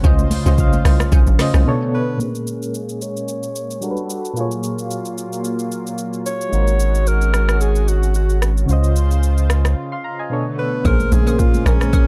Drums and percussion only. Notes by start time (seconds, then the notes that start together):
0.04 kick, shaker
0.19 high conga, shaker
0.31 open hi-hat, high conga, shaker
0.46 shaker
0.58 kick, shaker
0.73 high conga, shaker
0.85 cross-stick, open hi-hat, shaker
0.99 cross-stick, high conga, shaker
1.12 kick, low conga, shaker
1.27 shaker
1.39 cross-stick, snare, open hi-hat, high conga, shaker
1.54 cross-stick, high conga, shaker
2.20 shaker
2.35 shaker
2.47 shaker
2.62 shaker
2.74 shaker
2.89 shaker
3.02 shaker
3.17 shaker
3.28 shaker
3.43 shaker
3.56 shaker
3.71 shaker
3.82 shaker
3.97 shaker
4.10 shaker
4.25 shaker
4.37 shaker
4.51 shaker
4.63 shaker
4.79 shaker
4.91 shaker
5.05 shaker
5.18 shaker
5.33 shaker
5.44 shaker
5.59 shaker
5.72 shaker
5.87 shaker
5.98 shaker
6.13 shaker
6.26 shaker
6.41 shaker
6.53 shaker
6.67 shaker
6.80 shaker
6.95 shaker
7.07 shaker
7.21 shaker
7.34 cross-stick, shaker
7.49 cross-stick, shaker
7.61 shaker
7.75 shaker
7.88 shaker
8.03 shaker
8.14 shaker
8.29 shaker
8.42 cross-stick, shaker
8.57 shaker
8.69 shaker
8.84 shaker
8.96 shaker
9.11 shaker
9.23 shaker
9.38 shaker
9.50 cross-stick, shaker
9.65 cross-stick, shaker
10.85 kick, shaker
11.00 high conga, shaker
11.12 high conga, shaker
11.27 shaker
11.39 kick, shaker
11.54 high conga, shaker
11.66 cross-stick, shaker
11.80 cross-stick, high conga, shaker
11.93 kick, low conga, shaker